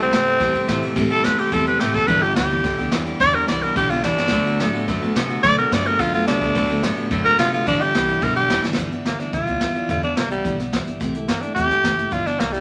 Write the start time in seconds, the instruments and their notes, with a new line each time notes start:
Already playing: clean electric guitar C3 G3, steel-string acoustic guitar G4
0.00 steel-string acoustic guitar A3 E4, tenor saxophone C4
0.11 upright bass G2, clean electric guitar C3, steel-string acoustic guitar E3 A3 E4 G4, snare, ride
0.25 steel-string acoustic guitar A3 E4 G4, ride
0.40 upright bass E2, steel-string acoustic guitar C3 E3 A3 E4 G4, clean electric guitar G3, kick, snare, ride
0.54 upright bass G2, steel-string acoustic guitar A3 E4 G4, ride
0.68 upright bass A2, clean electric guitar C3, steel-string acoustic guitar E3 A3 E4 G4, snare, ride
0.82 steel-string acoustic guitar A3 E4 G4, ride
0.96 upright bass A2, steel-string acoustic guitar C3 E3 A3 E4 G4, clean electric guitar G3, kick, ride
1.10 steel-string acoustic guitar A3 E4 G4, tenor saxophone A4, ride
1.24 upright bass E2, clean electric guitar C3, steel-string acoustic guitar E3 A3 E4 G4, tenor saxophone B4, snare, ride
1.38 steel-string acoustic guitar A3 E4 G4, tenor saxophone G4, ride
1.52 upright bass E2, steel-string acoustic guitar C3 E3 A3 E4 G4, clean electric guitar G3, tenor saxophone A4, kick, ride
1.66 steel-string acoustic guitar A3 E4 G4, tenor saxophone B4, ride
1.80 upright bass A1, clean electric guitar C3, steel-string acoustic guitar E3 A3 E4 G4, tenor saxophone G4, snare, ride
1.93 upright bass F#1, steel-string acoustic guitar A3 E4 G4, tenor saxophone A4, kick, ride
2.07 upright bass G1, steel-string acoustic guitar G2 D3 E3 G3 B3 G4, tenor saxophone B4, kick, ride
2.22 steel-string acoustic guitar E3 G3 B3 G4, tenor saxophone G4, ride
2.35 upright bass D2, clean electric guitar G2, steel-string acoustic guitar E3 G3 G4, tenor saxophone G4, snare, ride
2.50 steel-string acoustic guitar E3 G3 B3 G4, ride
2.64 upright bass B1, steel-string acoustic guitar G2 D3 E3 G3 B3 G4, kick, snare, ride
2.78 upright bass D2, steel-string acoustic guitar E3 G3 B3 G4, ride
2.92 upright bass E2, clean electric guitar G2, steel-string acoustic guitar E3 G3 B3 G4, snare, ride
3.06 steel-string acoustic guitar E3 G3 B3 G4, ride
3.20 upright bass E2, steel-string acoustic guitar G2 D3 E3 G3 B3 G4, tenor saxophone D5, kick, ride
3.34 steel-string acoustic guitar E3 G3 B3 G4, tenor saxophone A#4, ride
3.48 upright bass C2, clean electric guitar G2, steel-string acoustic guitar E3 G3 B3, tenor saxophone D5, snare, ride
3.62 steel-string acoustic guitar E3 G3 B3 G4, tenor saxophone A#4, ride
3.76 upright bass B1, steel-string acoustic guitar G2 D3 E3 G3 B3 G4, tenor saxophone G4, kick, snare, ride
3.90 steel-string acoustic guitar E3 G3 B3 G4, tenor saxophone F4, ride
4.03 upright bass E1, clean electric guitar G2, steel-string acoustic guitar E3 G3 B3 G4, tenor saxophone D4, snare, ride
4.17 upright bass G1, steel-string acoustic guitar E3 G3 B3 G4, snare
4.28 steel-string acoustic guitar D3, snare
4.32 upright bass D2, steel-string acoustic guitar F#3 A3 B3 F#4, kick, ride
4.46 steel-string acoustic guitar A3 B3 F#4, ride
4.60 upright bass A2, clean electric guitar D3, steel-string acoustic guitar F#3 A3 B3 F#4, snare, ride
4.73 steel-string acoustic guitar A3 B3 F#4, ride
4.88 upright bass F#2, steel-string acoustic guitar D3 F#3 A3 B3 F#4, kick, snare, ride
5.01 upright bass A2, steel-string acoustic guitar A3 B3 F#4, ride
5.15 upright bass C3, clean electric guitar D3, steel-string acoustic guitar F#3 A3 B3 F#4, snare, ride
5.29 steel-string acoustic guitar A3 B3 F#4, ride
5.43 upright bass B2, steel-string acoustic guitar D3 F#3 A3 B3 F#4, tenor saxophone D5, kick, ride
5.56 steel-string acoustic guitar A3 B3 F#4, tenor saxophone A#4, ride
5.71 upright bass G2, clean electric guitar D3, steel-string acoustic guitar F#3 A3 B3 F#4, tenor saxophone D5, snare, ride
5.85 steel-string acoustic guitar A3 B3 F#4, tenor saxophone A#4, ride
5.99 upright bass F#2, steel-string acoustic guitar D3 F#3 A3 B3 F#4, tenor saxophone F4, kick, snare, ride
6.12 steel-string acoustic guitar A3 B3 F#4, tenor saxophone F4, ride
6.27 upright bass C2, clean electric guitar D3, steel-string acoustic guitar F#3 A3 B3 F#4, tenor saxophone D4, snare, ride
6.41 upright bass D2, steel-string acoustic guitar A3 B3 F#4, kick, ride
6.55 upright bass D2, steel-string acoustic guitar D3 F#3 A3 B3 F#4, kick, ride
6.69 steel-string acoustic guitar A3 B3 F#4, ride
6.83 upright bass A2, clean electric guitar D3, steel-string acoustic guitar F#3 A3 B3 F#4, snare, ride
6.96 steel-string acoustic guitar A3 B3 F#4, ride
7.11 upright bass F#2, steel-string acoustic guitar D3 F#3 A3 B3 F#4, kick, snare, ride
7.25 upright bass A2, steel-string acoustic guitar A3 B3 F#4, tenor saxophone A#4, ride
7.38 upright bass C3, clean electric guitar D3, steel-string acoustic guitar F#3 A3 B3 F#4, tenor saxophone F4, snare, ride
7.52 steel-string acoustic guitar A3 B3 F#4, tenor saxophone F4, ride
7.66 upright bass G1, steel-string acoustic guitar G2 D3 E3 G3 B3 E4, tenor saxophone D4, kick, ride
7.80 steel-string acoustic guitar E3 G3 B3 E4, tenor saxophone G4, ride
7.94 upright bass C2, clean electric guitar G2, steel-string acoustic guitar E3 G3 B3 E4, snare, ride
8.08 steel-string acoustic guitar E3 G3 B3 E4, ride
8.21 upright bass B1, steel-string acoustic guitar G2 D3 E3 G3 B3 E4, tenor saxophone A#4, kick, ride
8.35 steel-string acoustic guitar E3 G3 B3 E4, tenor saxophone G4, ride
8.50 upright bass E1, clean electric guitar G2, steel-string acoustic guitar E3 G3 E4, snare, ride
8.63 upright bass G1, steel-string acoustic guitar E3 G3 B3 E4, snare
8.73 snare
8.77 upright bass G1, steel-string acoustic guitar G2 D3 E3 G3 B3 E4, kick, snare, closed hi-hat
8.91 steel-string acoustic guitar E3 G3 B3 E4, closed hi-hat
9.05 upright bass D2, steel-string acoustic guitar E3 G3 B3 E4, tenor saxophone A#3, snare, closed hi-hat
9.18 steel-string acoustic guitar E3 G3 B3 E4, tenor saxophone D4, snare, closed hi-hat
9.33 upright bass B1, steel-string acoustic guitar G2 D3 E3 G3 B3 E4, tenor saxophone F4, kick, closed hi-hat
9.47 upright bass D2, steel-string acoustic guitar E3 G3 B3 E4, closed hi-hat
9.60 upright bass E2, steel-string acoustic guitar E3 G3 B3 E4, kick, snare, closed hi-hat
9.75 steel-string acoustic guitar E3 G3 B3 E4, closed hi-hat
9.89 upright bass E2, steel-string acoustic guitar G2 D3 E3 G3 B3 E4, tenor saxophone F4, kick, closed hi-hat
10.02 steel-string acoustic guitar E3 G3 B3 E4, tenor saxophone D4, closed hi-hat
10.16 upright bass C2, steel-string acoustic guitar E3 G3 B3 E4, tenor saxophone A#3, snare, closed hi-hat
10.30 steel-string acoustic guitar E3 G3 B3 E4, tenor saxophone G3, closed hi-hat
10.44 upright bass B1, steel-string acoustic guitar G2 D3 E3 G3 B3 E4, kick, closed hi-hat
10.58 steel-string acoustic guitar E3 G3 B3 E4, snare, closed hi-hat
10.72 upright bass E1, steel-string acoustic guitar E3 G3 B3 E4, kick, snare, closed hi-hat
10.86 upright bass G1, steel-string acoustic guitar E3 G3 B3 E4, closed hi-hat
11.00 upright bass C2, steel-string acoustic guitar C3 E3 A3 E4 G4, kick, snare, closed hi-hat
11.14 steel-string acoustic guitar A3 E4 G4, closed hi-hat
11.28 upright bass G2, steel-string acoustic guitar E3 E4 G4, tenor saxophone A#3, snare, closed hi-hat
11.41 steel-string acoustic guitar A3 E4 G4, tenor saxophone D4, closed hi-hat
11.54 upright bass E2, steel-string acoustic guitar C3 E3 A3 E4 G4, tenor saxophone G4, kick, closed hi-hat
11.69 upright bass G2, steel-string acoustic guitar A3 E4 G4, snare, closed hi-hat
11.83 upright bass F#1, steel-string acoustic guitar E3 A3 E4, kick, snare, closed hi-hat
11.96 steel-string acoustic guitar A3 E4 G4, closed hi-hat
12.11 upright bass G1, steel-string acoustic guitar G2 D3 E3 G3 B3 E4, tenor saxophone F4, kick, closed hi-hat
12.25 steel-string acoustic guitar E3 G3 B3 E4, tenor saxophone D4, snare, closed hi-hat
12.39 upright bass C2, steel-string acoustic guitar E3 G3 E4, tenor saxophone A#3, snare, closed hi-hat
12.53 steel-string acoustic guitar E3 G3 B3 E4, tenor saxophone G3, closed hi-hat